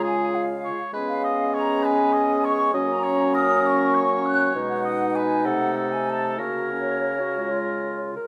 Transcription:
<<
  \new Staff \with { instrumentName = "Flute section" } { \time 3/4 \key des \major \tempo 4 = 195 aes''4 f''4. r8 | \key fis \major r8 eis''4. ais''4 | gis''2 cis'''4 | r8 ais''4. dis'''4 |
cis'''2 fis'''4 | r8 fis''4. gis''4 | ges''4. gis''8 a''4 | cis''2.~ |
cis''2~ cis''8 r8 | }
  \new Staff \with { instrumentName = "Oboe" } { \time 3/4 \key des \major aes'4. r8 des''4 | \key fis \major b'4 dis''4 cis''4 | b'4 dis''4 cis''4 | dis''4 cis''4 ais'4~ |
ais'4 cis''2~ | cis''4 dis''4 b'4 | a'4 a'2 | ais'2.~ |
ais'2~ ais'8 r8 | }
  \new Staff \with { instrumentName = "Clarinet" } { \time 3/4 \key des \major f'2 r4 | \key fis \major cis'2.~ | cis'2. | cis'2.~ |
cis'2. | dis'2.~ | dis'2. | fis'4 cis'4. fis'8~ |
fis'8 eis'2 ais'8 | }
  \new Staff \with { instrumentName = "French horn section" } { \time 3/4 \key des \major << { f'2. | \key fis \major cis'2.~ | cis'2. | cis'2.~ |
cis'2. | dis'2.~ | dis'2. | fis'2. |
eis'2~ eis'8 r8 | } \\ { aes2. | b2.~ | b2. | ais2.~ |
ais2. | gis2. | a2. | ais2. |
gis2~ gis8 r8 | } >> }
  \new Staff \with { instrumentName = "Bassoon" } { \clef bass \time 3/4 \key des \major des2 r4 | \key fis \major gis2.~ | gis2. | fis2.~ |
fis2. | b,2. | c2. | cis2.~ |
cis2~ cis8 r8 | }
>>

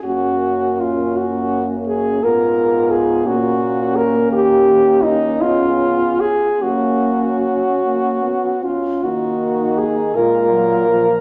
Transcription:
<<
  \new Staff \with { instrumentName = "French horn" } { \time 6/8 \key fis \major \tempo 4. = 54 fis'4 eis'8 fis'4 gis'8 | ais'4 aes'8 fis'4 ais'8 | g'4 dis'8 eis'4 gis'8 | fis'2~ fis'8 eis'8 |
\key ees \minor ges'4 aes'8 bes'4. | }
  \new Staff \with { instrumentName = "French horn" } { \time 6/8 \key fis \major cis'2. | f'4. cis'4.~ | cis'2~ cis'8 r8 | cis'2~ cis'8 r8 |
\key ees \minor ees'4. f'4. | }
  \new Staff \with { instrumentName = "French horn" } { \time 6/8 \key fis \major ais2. | ces'4. ais4.~ | ais4. b4 r8 | ais4. ais8 b8 cis'8 |
\key ees \minor bes4. aes8 ges8 f8 | }
  \new Staff \with { instrumentName = "French horn" } { \clef bass \time 6/8 \key fis \major fis,2. | aes,4. ais,4. | dis4. cis4 r8 | fis2~ fis8 r8 |
\key ees \minor ees4. bes,4. | }
>>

